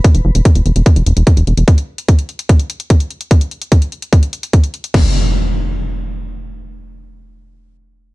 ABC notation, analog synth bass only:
X:1
M:4/4
L:1/16
Q:1/4=147
K:none
V:1 name="Analog synth bass" clef=bass
z E,,, F,,, E,,, z E,,, E,,, E,,, z E,,, E,,, E,,, z E,,, E,,, E,,, | z16 | z16 | z16 |
z16 |]